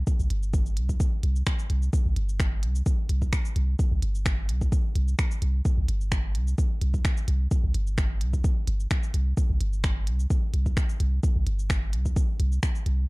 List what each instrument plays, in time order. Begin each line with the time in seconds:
0.07 kick, cabasa
0.19 sub bass C2, cabasa
0.30 sub bass G1, closed hi-hat
0.43 cabasa
0.54 kick, cabasa
0.66 cabasa
0.77 sub bass C2, closed hi-hat
0.89 kick, cabasa
1.00 kick, cabasa
1.23 sub bass C2, closed hi-hat
1.36 cabasa
1.47 finger snap, kick, cabasa
1.59 cabasa
1.70 sub bass C2, closed hi-hat
1.82 cabasa
1.93 kick, cabasa
2.06 sub bass C2
2.16 sub bass G1, closed hi-hat
2.29 cabasa
2.40 finger snap, kick, cabasa
2.63 sub bass C2, closed hi-hat
2.75 cabasa
2.86 kick, cabasa
3.09 sub bass C2, closed hi-hat
3.22 kick, cabasa
3.33 finger snap, kick, cabasa
3.45 cabasa
3.56 sub bass C2, closed hi-hat
3.79 kick, cabasa
3.92 sub bass C2
4.02 sub bass G1, closed hi-hat
4.15 cabasa
4.26 finger snap, kick, cabasa
4.49 sub bass C2, closed hi-hat
4.61 kick, cabasa
4.72 kick, cabasa
4.95 sub bass C2, closed hi-hat
5.08 cabasa
5.19 finger snap, kick, cabasa
5.31 cabasa
5.42 sub bass C2, closed hi-hat
5.65 kick, cabasa
5.78 sub bass C2
5.88 sub bass G1, closed hi-hat
6.01 cabasa
6.12 finger snap, kick, cabasa
6.35 sub bass C2, closed hi-hat
6.47 cabasa
6.58 kick, cabasa
6.81 sub bass C2, closed hi-hat
6.94 kick, cabasa
7.05 finger snap, kick, cabasa
7.17 cabasa
7.28 sub bass C2, closed hi-hat
7.51 kick, cabasa
7.64 sub bass C2
7.74 sub bass G1, closed hi-hat
7.87 cabasa
7.98 finger snap, kick, cabasa
8.21 sub bass C2, closed hi-hat
8.33 kick, cabasa
8.44 kick, cabasa
8.67 sub bass G1, closed hi-hat
8.80 cabasa
8.91 finger snap, kick, cabasa
9.03 cabasa
9.14 sub bass C2, closed hi-hat
9.37 kick, cabasa
9.50 sub bass C2
9.61 sub bass G1, closed hi-hat
9.73 cabasa
9.84 finger snap, kick, cabasa
10.07 sub bass C2, closed hi-hat
10.20 cabasa
10.30 kick, cabasa
10.54 sub bass C2, closed hi-hat
10.66 kick, cabasa
10.77 finger snap, kick, cabasa
10.89 cabasa
11.00 sub bass C2, closed hi-hat
11.23 kick, cabasa
11.36 sub bass C2
11.47 sub bass G1, closed hi-hat
11.59 cabasa
11.70 finger snap, kick, cabasa
11.93 sub bass C2, closed hi-hat
12.06 kick, cabasa
12.16 kick, cabasa
12.40 sub bass C2, closed hi-hat
12.52 cabasa
12.63 finger snap, kick, cabasa
12.75 cabasa
12.86 sub bass C2, closed hi-hat